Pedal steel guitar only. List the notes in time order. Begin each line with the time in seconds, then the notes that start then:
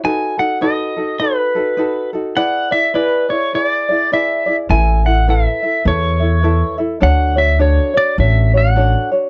0.05 G#5
0.39 F#5
0.62 D#5
1.20 B4
2.37 F#5
2.72 E5
2.95 B4
3.30 C#5
3.55 C#5
3.66 D5
4.13 E5
4.70 G#5
5.06 F#5
5.30 E5
5.88 C#5
7.03 F#5
7.38 E5
7.62 C#5
7.97 D5
8.20 E5
8.57 F#5